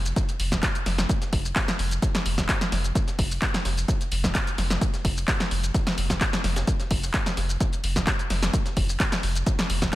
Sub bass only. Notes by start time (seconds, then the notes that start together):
Already playing: F1
0.40 F1
0.86 F1
1.33 F1
1.79 F1
2.26 F1
2.72 F1
3.19 F1
3.65 F1
4.12 F1
4.58 F1
5.05 F1
5.51 F1
5.98 F1
6.44 F1
6.91 F1
7.37 F1
7.84 F1
8.30 F1
8.77 F1
9.23 F1
9.70 F1